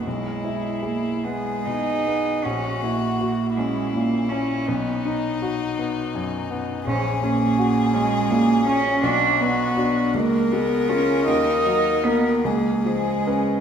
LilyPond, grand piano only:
\new Staff \with { instrumentName = "Grand piano" } { \time 6/8 \key b \major \tempo 4. = 54 b,,8 e'8 gis'8 b8 b,8 b8 | ais,,8 e'8 fis'8 cis'8 ais,8 cis'8 | b,,8 dis'8 fis'8 b8 fis,8 b8 | \key fis \major ais,,8 cis'8 fis'8 cis'8 ais,8 cis'8 |
b,,8 b8 <d' fis'>8 cis,8 gis8 <cis' eis'>8 | dis,8 fis8 <ais ais'>8 cis,8 eis8 <cis' b'>8 | }